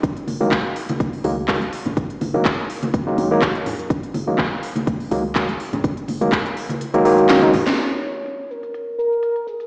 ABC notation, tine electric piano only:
X:1
M:4/4
L:1/16
Q:"Swing 16ths" 1/4=124
K:F#
V:1 name="Tine electric piano" clef=bass
z3 [D,F,G,A,] z6 [D,F,G,A,] z [D,F,G,A,] z3 | z3 [D,F,G,A,] z4 z [D,F,G,A,]2 [D,F,G,A,] z4 | z3 [D,F,G,A,] z6 [D,F,G,A,] z [D,F,G,A,] z3 | z3 [D,F,G,A,] z4 z [D,F,G,A,] [D,F,G,A,]3 [D,F,G,D] z2 |
z16 |]